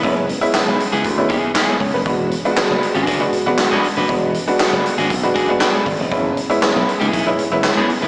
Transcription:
<<
  \new Staff \with { instrumentName = "Clean electric guitar" } { \time 4/4 \key e \major \tempo 4 = 118 r4. r16 <b e' gis'>16 r8 <b e' gis'>8 <b e' gis'>8 r8 | r4. r16 <d' fis' gis'>16 <d' fis' gis'>16 r4 <d' fis' gis'>16 r16 <d' fis' b'>16 | r4. r16 <d' fis' gis'>16 r8 <d' fis' gis'>16 r16 <d' fis' gis'>16 r8. | r4. r16 <b e' gis'>16 <b e' gis'>16 r4 <b e' gis'>16 r16 <b e' b'>16 | }
  \new Staff \with { instrumentName = "String machine" } { \time 4/4 \key e \major << { <cis' e'>1 | <d' fis'>1~ | <d' fis'>1 | <cis' e'>1 | } \\ { <gis b>1 | <gis b>1~ | <gis b>1~ | <gis b>1 | } >> }
  \new Staff \with { instrumentName = "Upright piano" } { \time 4/4 \key e \major << { r2. r16 gis'16 cis''16 b'16~ | b'16 r2. r8. | r2 r8 gis'8 b'8 d''8 | r1 | } \\ { <gis b cis' e'>8 r16 <gis b cis' e'>8. r8. <gis b cis' e'>16 r4. | <gis b d' fis'>8 r16 <gis b d' eis' fis'>8. r8. <gis b d' fis'>16 r16 <gis b d' fis'>8. r8 | <gis b d' fis'>8 r16 <gis b d' fis'>8. r8. <gis b d' fis'>16 r16 <gis b d' fis'>8. r8 | <gis b cis' e'>8 r16 <gis b cis' e'>8. r8. <gis b cis' e'>16 r16 <gis b cis' e'>8. r8 | } >> }
  \new Staff \with { instrumentName = "Slap bass" } { \clef bass \time 4/4 \key e \major fis,,8. r8 b,,16 r16 cis,16 d,8 r4 cis,16 fis,,16 | e,,8. r8 fis,,16 r16 gis,,16 fis,,8 r16 e,,16 r16 e,16 r16 fis,,16 | e,,8. r8 fis,,16 r16 gis,,16 b,,8 r4 gis,,16 e,,16 | fis,,8. r8 b,,16 r16 cis,16 b,,8 r16 fis,,16 r16 fis,16 r16 e,,16 | }
  \new DrumStaff \with { instrumentName = "Drums" } \drummode { \time 4/4 <hh bd>8 hh16 hh16 <hc hh sn>8 hh16 hh16 <hh bd>8 <hh bd>8 <hc hh sn>8 <hho bd>8 | <hh bd>8 hh16 hh16 <hc hh sn>8 hh16 hh16 <hh bd>8 hh8 <hc hh sn>8 hho8 | <hh bd>8 hh16 hh16 <hc hh sn>8 hh16 hh16 <hh bd>8 <hh bd>8 <hc hh sn>8 <hho bd>8 | <hh bd>8 hh16 hh16 <hc hh sn>8 hh16 hh16 <hh bd>8 hh8 <hc hh sn>8 hho8 | }
>>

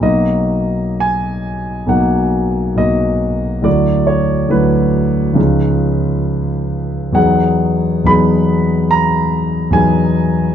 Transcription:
<<
  \new Staff \with { instrumentName = "Grand piano" } { \time 4/4 \key b \major \tempo 4 = 69 dis''4 gis''4 fis''4 dis''4 | d''8 cis''8 b'2. | fis''4 b''4 ais''4 gis''4 | }
  \new Staff \with { instrumentName = "Grand piano" } { \time 4/4 \key b \major <b,, fis ais dis' fis'>2 <b,, fis ais dis' fis'>4 <b,, fis ais dis' fis'>4 | <d, fis a e' fis'>4 <d, fis a e' fis'>4 <cis, eis cis' dis' gis'>2 | <e, fis b dis' gis'>4 <e, fis b dis' gis'>2 <e, fis b dis' gis'>4 | }
>>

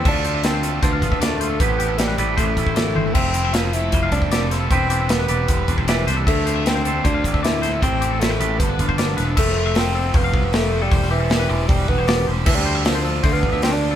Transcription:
<<
  \new Staff \with { instrumentName = "Clean electric guitar" } { \time 4/4 \key f \lydian \tempo 4 = 155 e''8 c''16 e''8 c''16 a'8 c''16 f''8 e''16 d''8 c''16 a'16 | c''8 g'16 a'8 b'16 d''8 c''16 b'8 c''16 d''8 c''16 a'16 | e''8 c''16 e''8 c''16 a'8 c''16 f''8 e''16 d''8 c''16 a'16 | c''8 g'16 a'8 b'16 d''8 c''16 b'8 c''16 d''8 c''16 a'16 |
e''8 c''16 e''8 c''16 a'8 c''16 f''8 e''16 d''8 c''16 a'16 | c''8 g'16 a'8 b'16 d''8 c''16 b'8 c''16 d''8 b'16 a'16 | e''8 c''16 e''8 c''16 a'8 c''16 f''8 e''16 d''8 c''16 a'16 | c''8 g'16 a'8 b'16 d''8 c''16 b'8 c''16 d''8 c''16 a'16 |
e''8 c''16 e''8 c''16 a'8 c''16 f''8 e''16 d''8 c''16 a'16 | }
  \new Staff \with { instrumentName = "Clean electric guitar" } { \time 4/4 \key f \lydian << { <a f' a'>8 f'8 a'8 a'8 a'8 f'8 a'8 f'8 | <a e' g' b'>8 e'8 g'8 b'8 g'8 e'4. | r8 e'8 e'4 g16 a8. g'16 a'16 e'8 | <g d' e' b'>8 d'8 e'8 b'4 d'8 b'8 d'8 |
r8 c'4 c''4 c'8 c'8 c'8~ | c'8 c'8 e'16 g'16 b'8 r8 f'4. | r1 | r1 |
r1 | } \\ { d4. a4. a,4 | a,4. a4. d8 e8 | f4. a8 r4 c4 | e4. g4. e4 |
d4. a4. a,4 | a,4. a8 g,4 d8 e8 | r1 | r1 |
r1 | } >> }
  \new Staff \with { instrumentName = "Overdriven electric guitar" } { \time 4/4 \key f \lydian <d a d' f'>8 <a d' f'>8 <d a d' f'>8 <d a d' f'>8 <d a d' f'>8 <a d' f'>8 <d a d' f'>8 <a d' f'>8 | <a, e a c' e'>8 <a c' e'>8 <e a c' e'>8 <a, e a c' e'>8 <e a c' e'>8 <a c' e'>8 <a, e a c' e'>8 <a c' e'>8 | <f a c' f'>8 <a c' f'>8 <f a c' f'>8 <f a c' f'>8 <f a c' f'>8 <a c' f'>8 <f a c' f'>8 <a c' f'>8 | <e g c' g'>8 <g c' g'>8 <e g c' g'>8 <e g c' g'>8 <e g c' g'>8 <g c' g'>8 <e g c' g'>8 <g c' g'>8 |
<d a d' f'>8 <a d' f'>8 <d a d' f'>8 <d a d' f'>8 <d a d' f'>8 <a d' f'>8 <d a d' f'>8 <a d' f'>8 | <a, e a c' e'>8 <a c' e'>8 <e a c' e'>8 <a, e a c' e'>8 <g, d f b d'>8 <f b d'>8 <g, d f b d'>8 <f b d'>8 | <f a c' f'>8 <a c' f'>8 <f a c' f'>8 <f a c' f'>8 <f a c' f'>8 <a c' f'>8 <f a c' f'>8 <a c' f'>8 | <e g c' g'>8 <g c' g'>8 <e g c' g'>8 <e g c' g'>8 <e g c' g'>8 <g c' g'>8 <e g c' g'>8 <g c' g'>8 |
<d a d' f'>8 <a d' f'>8 <d a d' f'>8 <d a d' f'>8 <d a d' f'>8 <a d' f'>8 <d a d' f'>8 <a d' f'>8 | }
  \new Staff \with { instrumentName = "Bassoon" } { \time 4/4 \key f \lydian d'4 c'4 b4 a4 | b4 g4 a4 a4 | c'4 f'8 e'4 d'4 r8 | c'4 b4. r8 e8 r8 |
a4 c'4 d'4 e'4 | c'4 a4 b4. r8 | a4 c'4 b4 a8. g16~ | g8 e4. g8 b4 r8 |
e16 g8. f4 a16 b8. c'16 d'8. | }
  \new Staff \with { instrumentName = "Picked electric bass" } { \clef bass \time 4/4 \key f \lydian d,2 d,8 a,,16 d,4~ d,16 | a,,4. a,,8 a,,8 a,,16 a,,8. g,,8 | f,,2 f,,8 c,16 f,,4~ f,,16 | e,,4. e,,8 e,,8 e,,16 e,,8. c,8 |
d,2 d,8 a,,16 d,4~ d,16 | a,,4. a,,8 g,,8 g,,16 g,,8. e,,8 | f,,2 f,,8 c,16 f,,4~ f,,16 | e,,4. e,,8 e,,8 e,,16 e,,8. e,,8 |
d,2 d,8 a,,16 d,4~ d,16 | }
  \new DrumStaff \with { instrumentName = "Drums" } \drummode { \time 4/4 <cymc bd>8 hh8 <hh sn>8 hh8 <hh bd>8 <hh bd>16 bd16 <hh sn>8 hh8 | <hh bd>8 hh8 <hh sn>8 hh8 <hh bd>8 <hh bd>16 bd16 <hh sn>8 tommh8 | <cymc bd>8 hh8 <hh sn>8 hh8 <hh bd>8 <hh bd>16 bd16 <hh sn>8 <hh sn>8 | <hh bd>8 hh8 <hh sn>8 hh8 <hh bd>8 <hh bd>16 bd16 <hh sn>8 <hh sn>8 |
<cymc bd>8 hh8 <hh sn>8 hh8 <hh bd>8 <hh bd>16 bd16 <hh sn>8 <hh sn>8 | <hh bd>8 hh8 <hh sn>8 hh8 <hh bd>8 <hh bd>16 bd16 <hh sn>8 <hh sn>8 | <cymc bd>16 sn8. <hho sn>4 <hho bd>8 bd8 <hho sn>4 | <hho bd>16 sn8. <hho sn>4 <hho bd>8 bd8 <hho sn>4 |
<cymc bd>16 sn8. <hho sn>4 <hho bd>8 bd8 <hho sn>4 | }
>>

